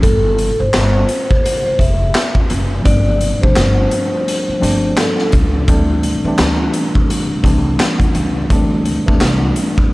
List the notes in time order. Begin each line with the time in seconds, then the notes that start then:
0.02 G1 A4, kick, closed hi-hat
0.38 closed hi-hat
0.59 G1 C5
0.74 G1, snare, clap, closed hi-hat
1.09 closed hi-hat
1.31 kick
1.44 C5, closed hi-hat
1.66 C5, muted upright bass stroke
1.79 F1 E5, kick, closed hi-hat
2.15 snare, clap, closed hi-hat
2.35 kick
2.50 F#1, closed hi-hat
2.82 G1 F3 G3 A3 C4 D4 D5, kick, closed hi-hat
3.21 closed hi-hat
3.41 C2 F3 G3 A3 C4 D4 C5, kick
3.56 G1, snare, clap, closed hi-hat
3.91 closed hi-hat
4.28 closed hi-hat
4.48 muted upright bass stroke
4.59 G1 F3 G3 A3 C4 D4, closed hi-hat
4.97 A4, snare, clap, closed hi-hat
5.18 snare
5.32 C#2, kick, closed hi-hat
5.67 D2 E3 G3 A3 C4 D4, kick, closed hi-hat
6.03 closed hi-hat
6.24 D2 E3 G3 A3 C4 D4
6.38 D2, snare, clap, closed hi-hat
6.74 closed hi-hat
6.95 kick
7.10 closed hi-hat
7.30 muted upright bass stroke
7.43 C2 E3 G3 A3 C4 D4, kick, closed hi-hat
7.79 snare, clap, closed hi-hat
8.00 kick, closed hi-hat
8.15 C#2, closed hi-hat
8.49 D2 E3 G3 A3 C4 D4, kick, closed hi-hat
8.85 closed hi-hat
9.05 D2 E3 F#3 A3 C4 D4, kick
9.13 G3
9.21 C2, snare, clap, closed hi-hat
9.56 closed hi-hat
9.78 kick